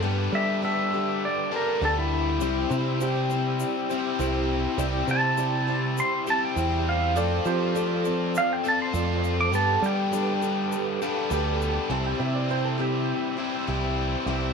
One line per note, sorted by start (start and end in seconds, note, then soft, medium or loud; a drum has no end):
0.00 1.50 G2 medium
0.00 0.27 G2 loud
0.00 1.51 D3 medium
0.00 0.33 G3 medium
0.00 0.33 B3 medium
0.00 0.33 D4 medium
0.00 0.33 G4 medium
0.00 0.32 A4 medium
0.00 2.38 B4 medium
0.00 4.74 G5 medium
0.00 2.38 A5 medium
0.00 2.38 D6 medium
0.33 1.25 G3 medium
0.33 0.62 D4 soft
0.33 0.62 G4 soft
0.33 0.63 A4 medium
0.33 0.63 E5 medium
0.62 0.93 B3 medium
0.62 0.93 D4 medium
0.62 0.93 G4 medium
0.62 0.91 A4 medium
0.62 1.22 E5 medium
0.92 1.52 D4 soft
0.92 1.52 G4 soft
0.92 1.51 A4 soft
1.25 1.53 D5 medium
1.52 1.80 G2 medium
1.52 1.81 D3 medium
1.52 1.82 G3 medium
1.52 1.81 B3 medium
1.52 1.81 D4 soft
1.52 1.82 G4 soft
1.52 1.82 A4 soft
1.56 1.83 A#4 medium
1.81 2.41 D2 medium
1.81 2.40 G2 medium
1.81 2.40 D3 medium
1.81 2.41 G3 medium
1.81 2.41 B3 medium
1.81 2.40 D4 medium
1.81 2.41 G4 medium
1.81 2.41 A4 medium
1.81 1.98 A4 medium
1.98 2.99 E4 loud
2.40 2.64 C2 medium
2.40 2.71 C3 medium
2.40 2.71 G3 medium
2.40 2.71 C4 medium
2.40 2.70 E4 medium
2.40 2.81 E4 medium
2.40 2.70 G4 medium
2.40 2.81 G4 medium
2.40 2.68 C5 medium
2.40 2.81 C5 medium
2.40 9.49 C5 medium
2.40 7.12 E5 medium
2.40 7.13 E6 medium
2.40 shaker medium
2.70 3.63 C3 medium
2.70 2.99 C4 soft
2.70 2.99 E4 soft
2.70 3.00 G4 medium
2.70 3.00 C5 medium
2.70 shaker medium
3.00 3.30 C4 medium
3.00 3.30 E4 medium
3.00 3.40 E4 medium
3.00 3.30 G4 medium
3.00 3.41 G4 medium
3.00 4.76 G4 medium
3.00 3.41 C5 medium
3.00 3.29 C5 medium
3.00 shaker medium
3.30 3.91 C4 soft
3.30 3.90 E4 soft
3.30 3.89 G4 soft
3.30 3.89 C5 medium
3.30 shaker medium
3.60 4.00 E4 medium
3.60 4.00 G4 medium
3.60 4.00 D5 medium
3.60 shaker loud
3.89 4.18 C3 medium
3.89 4.19 G3 medium
3.89 4.18 C4 soft
3.89 4.19 E4 soft
3.89 4.19 G4 soft
3.89 4.19 C5 medium
3.89 shaker medium
4.19 4.65 C2 medium
4.19 4.77 C3 medium
4.19 4.78 G3 medium
4.19 4.78 C4 medium
4.19 4.59 E4 medium
4.19 4.77 E4 medium
4.19 4.59 G4 medium
4.19 4.78 G4 medium
4.19 4.60 C5 medium
4.19 4.79 C5 medium
4.19 shaker medium
4.78 5.01 C2 medium
4.78 5.08 C3 medium
4.78 5.08 G3 medium
4.78 5.08 C4 medium
4.78 5.18 E4 medium
4.78 5.08 E4 medium
4.78 5.18 G4 medium
4.78 5.08 G4 medium
4.78 5.07 C5 medium
4.78 5.19 D5 medium
4.78 11.87 A5 medium
4.78 shaker loud
5.07 6.00 C3 medium
5.07 5.37 C4 soft
5.07 5.38 E4 soft
5.07 5.38 G4 soft
5.07 5.38 C5 medium
5.07 5.96 A5 medium
5.07 shaker medium
5.37 5.68 C4 medium
5.37 5.78 E4 medium
5.37 5.68 E4 medium
5.37 5.78 G4 medium
5.37 5.67 G4 medium
5.37 5.66 C5 medium
5.37 5.78 D5 medium
5.37 shaker medium
5.67 6.28 C4 soft
5.67 6.27 E4 soft
5.67 6.26 G4 medium
5.67 6.25 C5 medium
5.98 6.37 E4 medium
5.98 6.37 G4 medium
5.98 6.38 C5 medium
5.98 6.27 C6 medium
5.98 shaker loud
6.26 6.56 C3 medium
6.26 6.56 G3 medium
6.26 6.55 C4 soft
6.26 6.55 E4 soft
6.26 6.57 G4 medium
6.26 6.56 C5 soft
6.26 6.43 A5 medium
6.26 shaker medium
6.45 6.87 G5 medium
6.56 7.15 E2 medium
6.56 7.14 C3 medium
6.56 7.15 G3 medium
6.56 7.16 C4 medium
6.56 6.96 E4 medium
6.56 7.16 E4 medium
6.56 6.96 G4 medium
6.56 7.16 G4 medium
6.56 6.96 C5 medium
6.56 7.17 C5 medium
6.56 shaker medium
6.89 7.16 F5 loud
7.15 7.39 F2 loud
7.15 7.46 F3 medium
7.15 7.46 A3 medium
7.15 7.46 C4 medium
7.15 7.56 F4 medium
7.15 8.63 F4 medium
7.15 7.56 A4 medium
7.15 7.44 A4 medium
7.15 7.56 D5 medium
7.15 7.45 D5 medium
7.15 7.43 D5 medium
7.15 9.51 F5 medium
7.15 11.87 D6 medium
7.15 shaker medium
7.44 8.38 F3 medium
7.44 7.74 C4 soft
7.44 8.16 G4 medium
7.44 7.75 A4 medium
7.44 8.18 C5 medium
7.44 7.75 D5 medium
7.44 shaker medium
7.75 8.05 A3 medium
7.75 8.05 C4 medium
7.75 8.15 F4 medium
7.75 8.15 A4 medium
7.75 8.04 A4 medium
7.75 8.15 D5 medium
7.75 8.03 D5 medium
7.75 shaker medium
8.04 8.65 C4 medium
8.04 8.64 A4 medium
8.04 8.63 D5 medium
8.04 shaker medium
8.35 8.74 F4 medium
8.35 8.74 A4 medium
8.35 8.74 D5 medium
8.35 8.51 F5 medium
8.35 shaker medium
8.53 8.66 G5 medium
8.64 8.92 F3 medium
8.64 8.93 C4 soft
8.64 8.92 F4 medium
8.64 8.94 A4 soft
8.64 8.94 D5 medium
8.64 shaker medium
8.68 8.81 A5 medium
8.82 9.38 C6 loud
8.93 9.53 F2 medium
8.93 9.51 F3 medium
8.93 9.53 A3 medium
8.93 9.53 C4 medium
8.93 9.34 F4 medium
8.93 9.52 F4 medium
8.93 9.34 A4 medium
8.93 9.53 A4 medium
8.93 9.34 D5 medium
8.93 9.54 D5 medium
8.93 shaker medium
9.24 shaker medium
9.41 9.54 D6 medium
9.52 10.99 G2 medium
9.52 9.76 G2 loud
9.52 10.99 D3 medium
9.52 9.82 G3 medium
9.52 9.83 B3 medium
9.52 9.83 D4 medium
9.52 9.93 G4 medium
9.52 9.83 G4 medium
9.52 9.93 A4 medium
9.52 9.81 A4 medium
9.52 9.93 B4 medium
9.52 11.89 B4 medium
9.52 11.89 G5 medium
9.52 9.83 A5 medium
9.52 shaker medium
9.82 10.75 G3 medium
9.82 10.12 D4 soft
9.82 10.12 G4 soft
9.82 10.12 A4 medium
9.82 11.00 G5 medium
9.82 shaker medium
10.12 10.42 B3 medium
10.12 10.42 D4 medium
10.12 10.52 G4 medium
10.12 10.41 G4 medium
10.12 10.52 A4 medium
10.12 10.40 A4 medium
10.12 10.52 B4 medium
10.12 shaker medium
10.41 11.02 D4 soft
10.41 11.02 G4 medium
10.41 11.00 A4 medium
10.41 shaker medium
10.72 11.11 G4 medium
10.72 11.12 A4 medium
10.72 11.12 B4 medium
10.72 shaker medium
11.02 11.31 G2 medium
11.02 11.30 D3 medium
11.02 11.30 G3 medium
11.02 11.30 B3 loud
11.02 11.29 D4 soft
11.02 11.30 G4 soft
11.02 11.30 A4 medium
11.02 11.30 F5 medium
11.02 shaker medium
11.30 11.77 D2 medium
11.30 11.89 G2 medium
11.30 11.89 D3 medium
11.30 11.90 G3 medium
11.30 11.90 B3 medium
11.30 11.90 D4 medium
11.30 11.90 G4 medium
11.30 11.71 G4 medium
11.30 11.71 A4 medium
11.30 11.91 A4 medium
11.30 11.71 B4 loud
11.30 11.59 G5 medium
11.30 shaker medium
11.61 11.89 A5 medium
11.61 shaker medium
11.88 12.13 C2 medium
11.88 12.20 C3 medium
11.88 13.38 E3 medium
11.88 12.20 G3 medium
11.88 12.20 C4 medium
11.88 12.19 E4 medium
11.88 12.19 G4 medium
11.88 12.18 C5 medium
11.88 14.53 C5 medium
11.88 14.53 E5 medium
11.88 14.53 G5 medium
11.88 11.91 G#5 medium
11.88 14.26 E6 medium
11.92 12.05 A5 medium
12.06 12.20 G5 medium
12.19 13.12 C3 medium
12.19 12.48 C4 soft
12.19 12.49 E4 soft
12.19 12.50 G4 soft
12.19 12.49 C5 medium
12.19 12.34 E5 medium
12.35 12.49 D5 medium
12.49 12.79 C4 medium
12.49 12.78 E4 medium
12.49 12.78 G4 medium
12.49 12.64 C5 medium
12.49 12.76 C5 medium
12.65 12.78 A4 medium
12.78 13.39 C4 medium
12.78 13.37 E4 soft
12.78 13.36 G4 medium
12.78 13.95 G4 medium
12.78 13.36 C5 medium
13.37 13.67 G3 medium
13.37 13.66 C4 soft
13.37 13.66 E4 soft
13.37 13.67 G4 medium
13.37 13.67 C5 medium
13.41 13.67 C3 medium
13.41 13.67 E3 medium
13.67 14.14 C2 medium
13.67 14.26 C3 medium
13.67 14.26 E3 medium
13.67 14.26 G3 medium
13.67 14.27 C4 medium
13.67 14.27 E4 medium
13.67 14.27 G4 medium
13.67 14.28 C5 medium
14.26 14.50 C2 medium
14.26 14.53 C3 medium
14.26 14.53 E3 medium
14.26 14.53 G3 medium
14.26 14.53 C4 medium
14.26 14.53 E4 medium
14.26 14.53 G4 medium
14.26 14.53 C5 medium
14.26 14.53 D6 medium